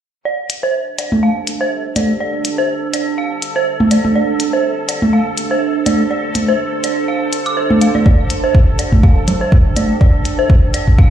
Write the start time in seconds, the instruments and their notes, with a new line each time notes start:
0.25 ambient pad D4, synth drone A4, synth bell D5
0.30 ambient pad G4
0.50 closed hi-hat
0.63 synth bell C5
0.89 ambient pad C5
0.97 synth bell D5, ambient pad E6, closed hi-hat
1.12 high tom
1.23 synth bell F5
1.47 closed hi-hat
1.61 synth bell C5
1.96 synth bell D5, closed hi-hat, high tom
2.20 synth bell D5
2.45 closed hi-hat
2.58 synth bell C5
2.94 synth bell D5, closed hi-hat
3.18 synth bell F5
3.42 closed hi-hat
3.56 synth bell C5
3.80 high tom
3.91 synth bell D5, closed hi-hat
4.05 high tom
4.16 synth bell D5
4.40 closed hi-hat
4.53 synth bell C5
4.89 synth bell D5, closed hi-hat
5.02 high tom
5.13 synth bell F5
5.38 closed hi-hat
5.51 synth bell C5
5.86 synth bell D5, closed hi-hat, high tom
6.11 synth bell D5
6.35 closed hi-hat, high tom
6.48 synth bell C5
6.84 synth bell D5, closed hi-hat
7.08 synth bell F5
7.33 closed hi-hat
7.46 synth bell D6, closed hi-hat
7.57 synth bell C5
7.70 high tom
7.81 synth bell F5, closed hi-hat
7.95 synth bell D5, high tom
8.06 synth bell D5, kick
8.30 closed hi-hat
8.44 synth bell C5
8.55 kick
8.79 synth bell D5, closed hi-hat
8.92 kick, high tom
9.03 synth bell F5, kick
9.28 closed hi-hat, low conga
9.41 synth bell C5
9.52 kick, low conga
9.76 synth bell D5, closed hi-hat, high tom
10.01 synth bell D5, kick
10.18 ambient pad D5
10.25 closed hi-hat
10.39 synth bell C5, ambient pad F5
10.50 kick
10.74 synth bell D5, closed hi-hat
10.87 kick
10.98 synth bell F5, kick